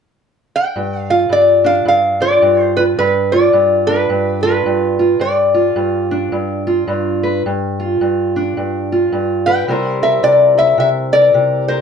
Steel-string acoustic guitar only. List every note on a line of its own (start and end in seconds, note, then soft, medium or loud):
0.76 1.29 G2 medium
1.10 2.20 F4 soft
1.29 1.85 G2 medium
1.64 3.88 D4 medium
1.85 2.42 G2 medium
2.20 2.76 F4 medium
2.42 2.98 G2 medium
2.77 3.01 F4 soft
2.98 3.53 G2 medium
3.33 4.43 F4 medium
3.53 4.09 G2 medium
3.88 6.11 D4 medium
4.10 4.65 G2 medium
4.44 4.99 F4 medium
4.66 5.19 G2 medium
4.99 5.23 F4 medium
5.20 5.75 G2 medium
5.54 6.66 F4 medium
5.76 6.32 G2 medium
6.11 7.42 D4 medium
6.32 6.86 G2 medium
6.67 7.42 F4 medium
6.88 7.44 G2 medium
7.23 7.42 B4 medium
7.46 8.00 G2 medium
7.80 8.90 F4 medium
8.01 8.56 G2 medium
8.36 9.65 D4 medium
8.57 9.11 G2 medium
8.92 9.66 F4 medium
9.12 9.67 G2 medium
9.47 9.65 B4 medium
9.68 10.22 C3 medium
9.68 11.81 G3 medium
9.68 10.57 E4 medium
9.68 10.02 A#4 medium
9.68 11.81 C5 medium
10.03 11.11 A#4 medium
10.23 10.77 C3 medium
10.58 11.81 E4 medium
10.78 11.33 C3 medium
11.13 11.68 A#4 medium
11.34 11.81 C3 medium
11.69 11.81 A#4 medium